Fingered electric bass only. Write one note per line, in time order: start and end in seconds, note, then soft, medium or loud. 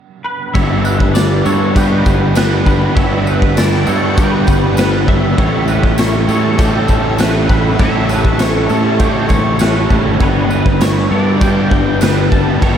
0.56 1.42 G1 medium
1.46 2.02 G2 medium
2.06 2.93 G1 medium
2.97 3.83 G1 medium
3.88 4.44 G2 medium
4.48 5.34 G1 medium
5.39 6.25 A1 medium
6.28 6.85 A2 medium
6.89 7.76 A1 medium
7.80 8.66 A1 medium
8.70 9.26 A2 medium
9.31 9.87 A1 medium
9.91 10.04 A1 medium
10.07 10.20 G1 loud
10.21 11.07 G1 medium
11.11 11.67 G2 medium
11.72 12.58 G1 medium
12.62 12.78 G1 medium